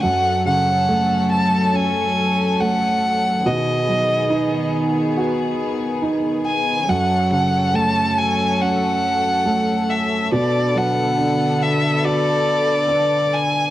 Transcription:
X:1
M:4/4
L:1/8
Q:1/4=70
K:F#m
V:1 name="Violin"
f f2 a g2 f2 | ^d3 z4 g | f f a g f3 e | d f2 e d3 g |]
V:2 name="String section"
[F,CA]8 | [^D,B,G]8 | [F,CA]8 | [D,B,A]8 |]
V:3 name="Grand piano"
F,, C, A,2 C2 A,2 | B,, F, ^D2 F2 D2 | F,, C, A,2 C2 A,2 | B,, F, D2 F2 D2 |]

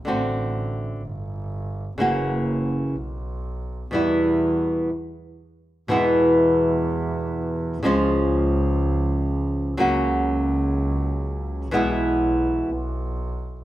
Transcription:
X:1
M:4/4
L:1/8
Q:1/4=123
K:Dmix
V:1 name="Nylon-string guitar" clef=bass
[D,A,CF]4 z4 | [^C,E,^A,^CF]4 z4 | [B,,E,G,B,E]4 z4 | [K:E] [B,,E,G,B,E]8 |
[C,^E,G,C^E]8 | [C,F,^A,CF]8 | [B,,E,G,B,E]4 z4 |]
V:2 name="Double bass" clef=bass
A,,,4 G,,,4 | F,,,4 B,,,4 | E,,4 z4 | [K:E] E,,8 |
C,,8 | C,,8 | B,,,4 B,,,4 |]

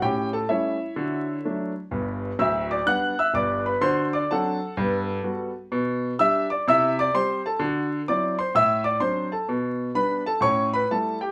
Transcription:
X:1
M:4/4
L:1/8
Q:"Swing" 1/4=127
K:Glyd
V:1 name="Grand piano"
[Gg] [Aa] [Ece]4- [Ece] z | z2 [ee'] [dd'] [ff'] [ee'] [dd'] [Bb] | [=c=c'] [dd'] [Afa]4- [Afa] z | [K:G] z2 [ee'] [dd'] [ee'] [dd'] [cc'] [Aa] |
z2 [dd'] [cc'] [ee'] [dd'] [cc'] [Aa] | z2 [Bb] [Aa] [^c^c'] [Bb] [Aa] [Gg] |]
V:2 name="Grand piano"
[A,,C]2 [G,A,C]2 [D,F]2 [F,A,D]2 | [G,,,G,,]2 [D,,,D,,]2 [G,B,D]2 [G,,,G,,]2 | [D,F]2 [F,=CD]2 [G,,B,]2 [G,B,F]2 | [K:G] B,,2 [G,DG]2 [C,E]2 [G,CG]2 |
[D,F]2 [F,CE]2 A,,2 [F,CD]2 | B,,2 [G,B,D]2 [A,,^C]2 [G,A,E]2 |]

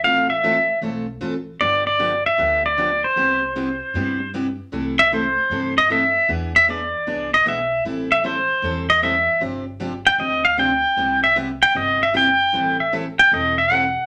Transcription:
X:1
M:4/4
L:1/16
Q:"Swing" 1/4=154
K:C
V:1 name="Pedal steel guitar"
f2 e6 z8 | d2 d4 e4 d4 c2- | c12 z4 | z2 e2 c6 _e2 =e4 |
z2 e2 d6 _e2 =e4 | z2 e2 c6 _e2 =e4 | z6 g2 _e2 f2 g4- | g2 e2 z2 g2 _e2 =e2 g4- |
g2 e2 z2 g2 _e2 =e2 ^f4 |]
V:2 name="Steel-string acoustic guitar"
[E,A,CFA]2 z2 [E,A,CFA] z3 [E,A,CFA]2 z2 [E,A,CFA] z3 | [D,F,B,DG]2 z2 [D,F,B,DG] z3 [D,F,B,DG]2 z2 [D,F,B,DG] z3 | [C,G,B,EG]2 z2 [C,G,B,EG] z3 [C,G,B,EG]2 z2 [C,G,B,EG] z3 | [C,E,A,EA]2 z2 [C,E,A,EA] z3 [C,E,A,EA]2 z2 [C,E,A,EA] z3 |
[E,B,D^G]2 z2 [E,B,DG] z3 [E,B,DG]2 z2 [E,B,DG] z3 | [E,G,CEA]2 z2 [E,G,CEA] z3 [E,G,CEA]2 z2 [E,G,CEA] z3 | [C,F,CDG]2 z2 [C,F,CDG] z3 [C,F,CDG]2 z2 [C,F,CDG] z3 | [C,G,B,EG]2 z2 [C,G,B,EG] z3 [C,G,B,EG]2 z2 [C,G,B,EG] z3 |
[E,G,CEA]2 z2 [E,G,CEA] z3 [E,G,CEA]2 z2 [E,G,CEA] z3 |]
V:3 name="Upright bass" clef=bass
A,,,8 B,,,4 A,,,4 | G,,,8 D,,8 | C,,8 G,,8 | C,,8 G,,8 |
E,,8 C,,4 B,,,4 | A,,,8 E,,8 | G,,,8 D,,8 | C,,8 G,,,8 |
A,,,8 E,,,8 |]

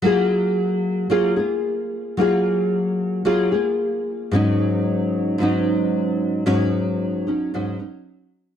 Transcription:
X:1
M:4/4
L:1/8
Q:1/4=112
K:Gb
V:1 name="Nylon-string guitar"
[G,B,FA]4 [G,B,FA] [B,FA]3 | [G,B,FA]4 [G,B,FA] [B,FA]3 | [A,,G,DE]4 [A,,G,DE]4 | [A,,G,DE]3 [G,DE] [A,,G,DE] [G,DE]3 |]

